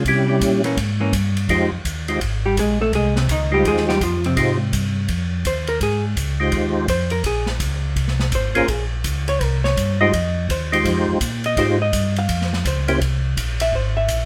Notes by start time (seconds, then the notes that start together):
0.05 C3 G3 C#4 E4 G4, kick, ride
0.28 G3 C#4 E4 G4
0.41 A#2, kick, hi-hat pedal, ride
0.64 E3 A#3 C#4, ride
0.77 G#2, kick, ride
1.00 E3 A#3 C#4
1.13 G2, kick, hi-hat pedal, ride
1.37 ride
1.49 F2 G#3 D#4 F4 G4 C5, kick, ride
1.71 F2
1.85 D#2, kick, hi-hat pedal, ride
2.08 G#3 D#4 F4 G4 C5, ride
2.21 G#1, kick, ride
2.46 G3 G4
2.57 A#1 G#3 G#4, kick, hi-hat pedal, ride
2.81 A3 A4
2.93 C2 G#3 G#4, kick, ride
3.16 C3 C4, snare
3.29 C#2 D#3 D#4, kick, hi-hat pedal, ride
3.51 G3 G#3 D#4 F4 G4 C5
3.65 D#2 G#3 G#4, kick, ride
3.77 snare
3.89 G3 G4, snare
4.01 F2 F3 F4, kick, hi-hat pedal, ride
4.24 C3 C4, ride
4.36 G#2 G#3 D#4 F4 G4 C5, kick, ride
4.73 G2, kick, hi-hat pedal, ride
5.08 F2, kick, ride
5.45 D#2 C5, kick, hi-hat pedal, ride
5.67 A#4, ride
5.81 G#2 G#4, kick, ride
6.16 C#2, kick, hi-hat pedal, ride
6.40 G#3 D#4 F4 G4 C5
6.52 D#2, kick, ride
6.88 F2 C5, kick, hi-hat pedal, ride
7.10 A#4, ride
7.24 A#1 G#4, kick, ride
7.46 snare
7.60 C#2, kick, hi-hat pedal, ride
7.96 C2, kick, ride
8.08 snare
8.19 snare
8.32 G#1 C5, kick, hi-hat pedal, ride
8.55 G#1 A#3 C#4 F4 G#4 A#4 C5, ride
8.68 A#1 G#4, kick, ride
9.04 C#2, kick, hi-hat pedal, ride
9.28 C#5, ride
9.41 C2 A#4, kick, ride
9.64 C#5, snare
9.77 G2, kick, hi-hat pedal, ride
10.01 G#3 D#4 F4 G4 C5 D#5
10.13 F2, kick, ride
10.49 D#2 C5, kick, hi-hat pedal, ride
10.72 G#3 D#4 F4 G4 C5, ride
10.85 F2, kick, ride
11.08 F2
11.21 A#2, kick, hi-hat pedal, ride
11.44 D#5, ride
11.57 G#2 G#3 D#4 F4 G4 C5, kick, ride
11.82 D#5
11.93 G2, kick, hi-hat pedal, ride
12.16 F5, ride
12.29 F2, kick, ride
12.41 snare
12.53 snare
12.65 C#2 C5, kick, hi-hat pedal, ride
12.88 A#3 C#4 E4 G4 C5, ride
13.01 C2, kick, ride
13.37 A#1, kick, hi-hat pedal, ride
13.60 E5, ride
13.73 G#1 C5, kick
13.97 E5
14.08 A#1, kick, hi-hat pedal, ride